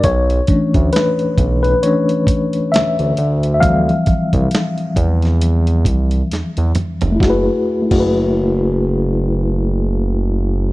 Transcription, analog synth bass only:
X:1
M:4/4
L:1/16
Q:"Swing 16ths" 1/4=67
K:F#m
V:1 name="Analog synth bass" clef=bass
B,,,2 z D,, z2 B,,,2 z4 D,, D,, D,,2- | D,,2 z =C,, z2 E,,4 C,,2 E,, E,, z =F,,, | F,,, z2 F,,,12- F,,, |]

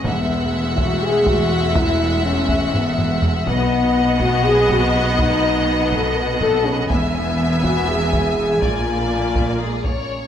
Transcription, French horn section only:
X:1
M:7/8
L:1/8
Q:1/4=122
K:E
V:1 name="French horn section"
B,3 F G F2 | E2 C2 B,2 z | B,3 F G F2 | D3 A B A C |
B,3 F G3 | ^E4 G, C2 |]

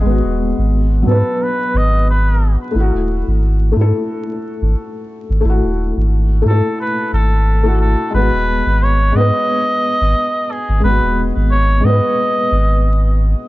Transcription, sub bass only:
X:1
M:4/4
L:1/16
Q:"Swing 16ths" 1/4=89
K:G#phr
V:1 name="Sub bass" clef=bass
G,,, D,,,2 G,,,3 G,, z3 G,,,4- G,,, z | G,,, D,,,2 G,,,3 G,, z4 G,,, z3 G,,, | G,,, D,,,2 G,,,3 G,, z3 G,,,4- G,,, z | G,,, D,,,2 G,,,3 G,, z4 G,,, z3 G,,, |
G,,, D,,,2 G,,,3 G,, z3 G,,,4- G,,, z |]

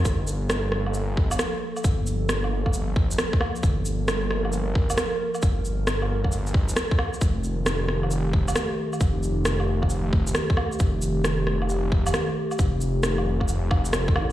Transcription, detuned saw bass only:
X:1
M:4/4
L:1/16
Q:"Swing 16ths" 1/4=134
K:Gm
V:1 name="Detuned saw bass" clef=bass
G,,,12 z4 | G,,,12 z4 | G,,,12 z4 | G,,,12 z4 |
F,,,12 z4 | F,,,12 z4 | F,,,12 z4 | F,,,12- F,,, E,,, A,,,2 |]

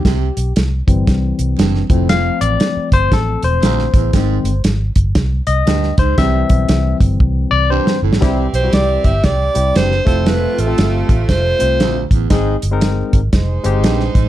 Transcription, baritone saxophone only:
X:1
M:4/4
L:1/8
Q:"Swing" 1/4=118
K:C
V:1 name="Baritone saxophone" clef=bass
C, z4 z G,, A,, | F,, z4 z D,, E,, | _A,, z4 z G,, A,, | C, z4 z G,, A,, |
C, z4 z G,, A,, | F,, z4 z D,, E,, | _A,, z4 z G,, A,, |]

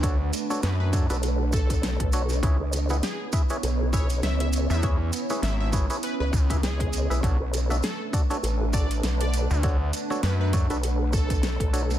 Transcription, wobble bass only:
X:1
M:4/4
L:1/16
Q:"Swing 16ths" 1/4=100
K:Bdor
V:1 name="Wobble bass" clef=bass
z6 z B,,,6 B,,,3 | z C,,3 z4 B,,,4 C,,3 z | z8 z C,, z2 C,,3 B,,, | z B,,,3 z4 A,,,4 B,,,3 z |
z6 z B,,,6 B,,,3 |]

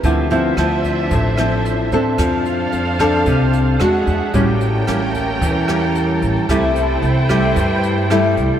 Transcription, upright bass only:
X:1
M:4/4
L:1/16
Q:1/4=112
K:C
V:1 name="Upright bass" clef=bass
D,,4 D,,4 A,,,6 E,, z | F,,4 F,,4 C,,4 E,,2 E,, z | A,,,4 A,,,4 E,,6 A,,, z | C,,4 C,,4 G,,6 C,, z |]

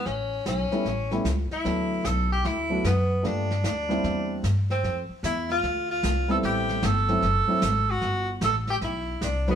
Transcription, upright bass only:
X:1
M:4/4
L:1/8
Q:"Swing" 1/4=151
K:Dmix
V:1 name="Upright bass" clef=bass
A,,,2 B,,, z A,,,2 ^C,, z | D,,2 B,,,2 D,,2 F,,2 | G,,2 D,,2 E,,2 G,,2 | =F,, z E,,2 D,,2 C,,2 |
A,,,2 G,,,2 F,,, z ^G,,,2 | G,,,2 A,,,2 B,,,2 C,,2 |]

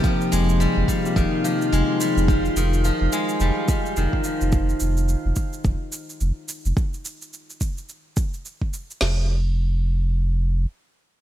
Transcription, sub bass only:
X:1
M:4/4
L:1/16
Q:"Swing 16ths" 1/4=107
K:Fm
V:1 name="Sub bass" clef=bass
z2 F,,,2 z F,,, z2 F,,, z3 F,,, z2 F,,,- | F,,, z F,,,2 z F,,, z2 F,,, z3 F,,, z2 F,,,- | F,,, z F,,,2 z F,,, z2 F,,, z3 F,,, z2 F,,, | z16 |
F,,,12 z4 |]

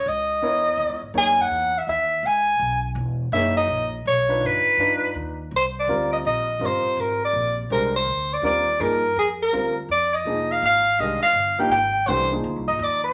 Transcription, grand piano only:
X:1
M:3/4
L:1/8
Q:"Swing" 1/4=165
K:F#mix
V:1 name="Grand piano"
z2 [B,EAc]3 z | [A,DGc]3 z3 | z6 | [A,DGc]3 z2 [=D^D^EB]- |
[=D^D^EB]2 [=D_E=FB]3 z | [K:Cm] z2 [G,CFB]3 z | [G,CFB]4- [G,CFB] z | [A,DGc] z3 [G,CFB] z |
[F,B,EA] z3 [G,CFB] z | z2 [F,B,EA]3 z | [E,A,DG] z2 [F,B,EG] z2 | [=E,=A,DG] [F,B,_E_A]4 z |]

